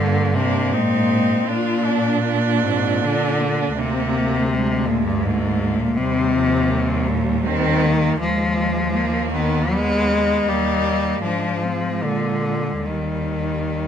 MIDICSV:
0, 0, Header, 1, 5, 480
1, 0, Start_track
1, 0, Key_signature, -3, "major"
1, 0, Tempo, 751880
1, 941, Time_signature, 3, 2, 24, 8
1, 1421, Tempo, 817439
1, 1901, Tempo, 730816
1, 4301, Tempo, 754717
1, 7181, Tempo, 817439
1, 8737, End_track
2, 0, Start_track
2, 0, Title_t, "Cello"
2, 0, Program_c, 0, 42
2, 0, Note_on_c, 0, 58, 60
2, 220, Note_off_c, 0, 58, 0
2, 224, Note_on_c, 0, 62, 65
2, 467, Note_on_c, 0, 63, 57
2, 476, Note_off_c, 0, 62, 0
2, 941, Note_on_c, 0, 65, 65
2, 950, Note_off_c, 0, 63, 0
2, 1181, Note_on_c, 0, 62, 61
2, 1191, Note_off_c, 0, 65, 0
2, 1420, Note_off_c, 0, 62, 0
2, 1424, Note_on_c, 0, 58, 60
2, 1662, Note_on_c, 0, 60, 57
2, 1671, Note_off_c, 0, 58, 0
2, 1898, Note_on_c, 0, 62, 62
2, 1908, Note_off_c, 0, 60, 0
2, 2142, Note_on_c, 0, 58, 54
2, 2151, Note_off_c, 0, 62, 0
2, 2379, Note_off_c, 0, 58, 0
2, 2383, Note_on_c, 0, 60, 66
2, 2625, Note_on_c, 0, 58, 57
2, 2635, Note_off_c, 0, 60, 0
2, 2867, Note_on_c, 0, 56, 60
2, 2877, Note_off_c, 0, 58, 0
2, 3343, Note_on_c, 0, 58, 60
2, 3353, Note_off_c, 0, 56, 0
2, 3821, Note_off_c, 0, 58, 0
2, 3825, Note_on_c, 0, 60, 67
2, 4298, Note_on_c, 0, 58, 59
2, 4308, Note_off_c, 0, 60, 0
2, 4550, Note_on_c, 0, 55, 62
2, 4559, Note_off_c, 0, 58, 0
2, 5251, Note_off_c, 0, 55, 0
2, 5255, Note_on_c, 0, 56, 62
2, 5726, Note_on_c, 0, 58, 64
2, 5736, Note_off_c, 0, 56, 0
2, 6236, Note_on_c, 0, 59, 58
2, 6246, Note_off_c, 0, 58, 0
2, 6475, Note_on_c, 0, 63, 65
2, 6485, Note_off_c, 0, 59, 0
2, 7180, Note_off_c, 0, 63, 0
2, 7185, Note_on_c, 0, 62, 52
2, 7419, Note_on_c, 0, 60, 49
2, 7428, Note_off_c, 0, 62, 0
2, 7655, Note_on_c, 0, 58, 46
2, 7664, Note_off_c, 0, 60, 0
2, 7890, Note_off_c, 0, 58, 0
2, 7900, Note_on_c, 0, 56, 46
2, 8140, Note_on_c, 0, 55, 49
2, 8149, Note_off_c, 0, 56, 0
2, 8737, Note_off_c, 0, 55, 0
2, 8737, End_track
3, 0, Start_track
3, 0, Title_t, "Cello"
3, 0, Program_c, 1, 42
3, 0, Note_on_c, 1, 58, 57
3, 227, Note_off_c, 1, 58, 0
3, 231, Note_on_c, 1, 58, 61
3, 466, Note_on_c, 1, 60, 53
3, 476, Note_off_c, 1, 58, 0
3, 949, Note_on_c, 1, 62, 55
3, 959, Note_off_c, 1, 60, 0
3, 2392, Note_on_c, 1, 58, 50
3, 2402, Note_off_c, 1, 62, 0
3, 2872, Note_off_c, 1, 58, 0
3, 2880, Note_on_c, 1, 56, 56
3, 3808, Note_off_c, 1, 56, 0
3, 3826, Note_on_c, 1, 55, 53
3, 4062, Note_on_c, 1, 53, 61
3, 4072, Note_off_c, 1, 55, 0
3, 4301, Note_on_c, 1, 55, 53
3, 4311, Note_off_c, 1, 53, 0
3, 4797, Note_on_c, 1, 60, 63
3, 4807, Note_off_c, 1, 55, 0
3, 5037, Note_on_c, 1, 58, 59
3, 5046, Note_off_c, 1, 60, 0
3, 5265, Note_off_c, 1, 58, 0
3, 5274, Note_on_c, 1, 56, 49
3, 5494, Note_off_c, 1, 56, 0
3, 5501, Note_on_c, 1, 56, 57
3, 5736, Note_on_c, 1, 58, 54
3, 5746, Note_off_c, 1, 56, 0
3, 5980, Note_on_c, 1, 59, 54
3, 5989, Note_off_c, 1, 58, 0
3, 6233, Note_off_c, 1, 59, 0
3, 6237, Note_on_c, 1, 59, 53
3, 6701, Note_on_c, 1, 58, 47
3, 6711, Note_off_c, 1, 59, 0
3, 7181, Note_on_c, 1, 56, 46
3, 7190, Note_off_c, 1, 58, 0
3, 8129, Note_off_c, 1, 56, 0
3, 8132, Note_on_c, 1, 55, 38
3, 8737, Note_off_c, 1, 55, 0
3, 8737, End_track
4, 0, Start_track
4, 0, Title_t, "Cello"
4, 0, Program_c, 2, 42
4, 0, Note_on_c, 2, 50, 79
4, 220, Note_on_c, 2, 48, 73
4, 230, Note_off_c, 2, 50, 0
4, 462, Note_on_c, 2, 46, 76
4, 472, Note_off_c, 2, 48, 0
4, 937, Note_off_c, 2, 46, 0
4, 941, Note_on_c, 2, 46, 75
4, 1661, Note_on_c, 2, 44, 69
4, 1669, Note_off_c, 2, 46, 0
4, 1899, Note_on_c, 2, 50, 74
4, 1909, Note_off_c, 2, 44, 0
4, 2376, Note_off_c, 2, 50, 0
4, 2380, Note_on_c, 2, 48, 79
4, 3104, Note_on_c, 2, 46, 69
4, 3114, Note_off_c, 2, 48, 0
4, 3215, Note_off_c, 2, 46, 0
4, 3219, Note_on_c, 2, 43, 65
4, 3342, Note_on_c, 2, 44, 70
4, 3352, Note_off_c, 2, 43, 0
4, 3700, Note_on_c, 2, 46, 72
4, 3710, Note_off_c, 2, 44, 0
4, 3819, Note_on_c, 2, 48, 84
4, 3829, Note_off_c, 2, 46, 0
4, 4540, Note_on_c, 2, 46, 69
4, 4549, Note_off_c, 2, 48, 0
4, 4783, Note_off_c, 2, 46, 0
4, 4787, Note_on_c, 2, 51, 86
4, 5248, Note_off_c, 2, 51, 0
4, 5257, Note_on_c, 2, 53, 81
4, 5959, Note_off_c, 2, 53, 0
4, 5975, Note_on_c, 2, 51, 76
4, 6235, Note_on_c, 2, 56, 88
4, 6244, Note_off_c, 2, 51, 0
4, 6706, Note_on_c, 2, 55, 76
4, 6715, Note_off_c, 2, 56, 0
4, 7181, Note_off_c, 2, 55, 0
4, 7188, Note_on_c, 2, 53, 70
4, 7655, Note_on_c, 2, 50, 66
4, 7664, Note_off_c, 2, 53, 0
4, 8136, Note_on_c, 2, 51, 59
4, 8145, Note_off_c, 2, 50, 0
4, 8737, Note_off_c, 2, 51, 0
4, 8737, End_track
5, 0, Start_track
5, 0, Title_t, "Cello"
5, 0, Program_c, 3, 42
5, 0, Note_on_c, 3, 43, 69
5, 472, Note_on_c, 3, 44, 56
5, 481, Note_off_c, 3, 43, 0
5, 941, Note_off_c, 3, 44, 0
5, 945, Note_on_c, 3, 46, 63
5, 2361, Note_off_c, 3, 46, 0
5, 2391, Note_on_c, 3, 38, 61
5, 3826, Note_on_c, 3, 39, 66
5, 3836, Note_off_c, 3, 38, 0
5, 5258, Note_off_c, 3, 39, 0
5, 5262, Note_on_c, 3, 39, 58
5, 6676, Note_off_c, 3, 39, 0
5, 6702, Note_on_c, 3, 39, 58
5, 7170, Note_off_c, 3, 39, 0
5, 7176, Note_on_c, 3, 44, 50
5, 7654, Note_on_c, 3, 46, 45
5, 7663, Note_off_c, 3, 44, 0
5, 8127, Note_off_c, 3, 46, 0
5, 8131, Note_on_c, 3, 39, 44
5, 8737, Note_off_c, 3, 39, 0
5, 8737, End_track
0, 0, End_of_file